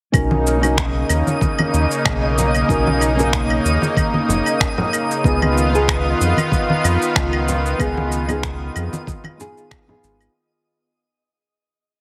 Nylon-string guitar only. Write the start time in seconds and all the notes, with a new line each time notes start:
0.12 C#4 D#4 F#4 A#4
0.61 C#4 D#4 F#4 A#4
2.68 C#4 D#4 F#4 A#4
3.17 C#4 D#4 F#4 A#4
5.24 B3 D#4 F4 G#4
5.72 B3 D#4 F4 G#4
7.78 B3 D#4 F4 G#4
8.28 B3 D#4 F4 G#4
9.38 B3 D#4 F4 G#4
9.87 B3 D#4 F4 G#4